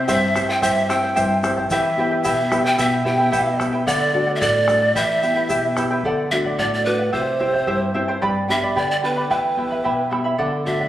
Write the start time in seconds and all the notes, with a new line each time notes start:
Already playing: C4 E4 G4
0.07 G2 E4 G4 C5 E5 G5, bombo low, shaker
0.35 C4 E4 G4 C5 E5 G5, bombo rim, bombo low, shaker
0.49 E4 C5 G5
0.62 G2 E4 G4 C5 E5 G5, bombo low, shaker
0.89 C4 E4 G4 C5 E5 G5, bombo rim, shaker
1.03 E4 C5 G5
1.16 G2 E4 G4 C5 E5 G5, bombo low, shaker
1.43 C4 E4 G4 C5 E5 G5, bombo rim, bombo low, shaker
1.57 E4 C5 G5, bombo low
1.70 E3 E4 G4 B4 E5 G5, bombo low, shaker
1.97 B3 E4 G4 B4 E5 G5
2.11 E4 B4 G5
2.24 B2 E4 G4 B4 E5 G5, bombo low, shaker
2.51 B3 E4 G4 B4 E5 G5, bombo rim, bombo low, shaker
2.65 E4 B4 G5
2.78 B2 E4 G4 B4 E5 G5, bombo low, shaker
3.04 B3 E4 G4 B4 E5 G5
3.19 E4 B4 G5
3.32 B2 E4 G4 B4 E5 G5, bombo low, shaker
3.59 B3 E4 G4 B4 E5 G5, bombo rim, bombo low, shaker
3.73 E4 B4 G5
3.86 D3 A4 D5 F#5, bombo low, shaker
4.13 A3 D4 F#4 A4 D5 F#5
4.27 D5 F#5
4.36 E5
4.41 A2 A4 D5 F#5, bombo low, shaker
4.67 A3 D4 F#4 A4 D5 F#5, bombo rim, bombo low, shaker
4.82 D5 F#5
4.95 E3 E4 G4 B4 E5 G5, bombo low, shaker
5.22 B3 E4 G4 B4 E5 G5, shaker
5.35 E4 B4 G5
5.49 B2 E4 G4 B4 E5 G5, bombo low, shaker
5.76 B3 E4 G4 B4 E5 G5, bombo rim, bombo low, shaker
5.91 E4 B4 G5
6.03 D3 A4 D5 F#5, bombo low
6.30 A3 D4 F#4 A4 D5 E5 F#5, bombo low
6.44 D5 F#5, bombo low
6.58 A2 A4 D5 F#5, bombo low
6.74 D5
6.85 A3 D4 F#4 A4 B4 D5 F#5
6.99 D5 F#5
7.12 C3 E4 G4 C5 E5 G5, bombo low
7.40 C4 E4 G4 C5 E5 G5, bombo low
7.53 E4 C5 G5, bombo low
7.67 G2 E4 G4 C5 E5 G5, bombo low
7.94 C4 E4 G4 C5 E5 G5
8.08 E4 C5 G5
8.22 G2 G4 B4 D5 G5 B5, bombo low
8.48 B3 D4 G4 B4 D5 E5 G5 B5, bombo low
8.62 B4 D5 B5, bombo low
8.76 D3 G4 B4 D5 G5 B5, bombo low
8.91 D5
9.03 B3 D4 G4 B4 D5 G5 B5
9.16 B4 D5 B5
9.30 E2 E4 G4 B4 E5 G5 B5, bombo low
9.57 B3 E4 G4 E5 G5 B5, bombo low
9.71 E4 E5 B5, bombo low
9.84 B2 E4 G4 E5 G5 B5, bombo low
10.10 B3 E4 G4 E5 G5 B5, bombo rim
10.24 E4 E5 B5
10.38 D3 A4 D5 F#5, bombo low
10.65 A3 D4 F#4 A4 D5 E5 F#5, bombo low
10.80 D5 F#5, bombo low